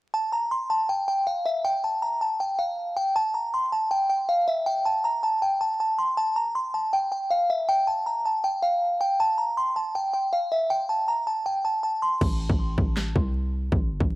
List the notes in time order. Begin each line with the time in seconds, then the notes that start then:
0.14 A5
0.32 A#5
0.51 C6
0.70 A5
0.89 G5
1.08 G5
1.27 F5
1.46 E5
1.64 G5
1.84 A5
2.02 A#5
2.21 A5
2.40 G5
2.59 F5
2.97 G5
3.16 A5
3.34 A#5
3.54 C6
3.72 A5
3.91 G5
4.10 G5
4.29 F5
4.48 E5
4.66 G5
4.85 A5
5.04 A#5
5.23 A5
5.42 G5
5.61 A5
5.80 A5
5.99 C6
6.17 A5
6.36 A#5
6.55 C6
6.74 A5
6.93 G5
7.12 G5
7.30 F5
7.50 E5
7.69 G5
7.87 A5
8.06 A#5
8.26 A5
8.44 G5
8.62 F5
9.01 G5
9.20 A5
9.38 A#5
9.57 C6
9.76 A5
9.95 G5
10.13 G5
10.33 F5
10.52 E5
10.70 G5
10.89 A5
11.08 A#5
11.27 A5
11.46 G5
11.65 A5
11.83 A5
12.02 C6
12.21 A1, kick, crash
12.49 A1, kick
12.78 A1, kick
12.97 snare, clap
13.16 C2, kick
13.72 A1, kick
13.91 G1
14.00 A1, kick